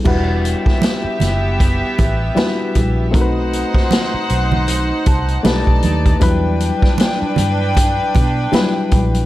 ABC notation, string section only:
X:1
M:4/4
L:1/8
Q:"Swing 16ths" 1/4=78
K:Em
V:1 name="String section"
[B,Ge]8 | [^Dcf]6 [D=da]2 | [DBg]8 |]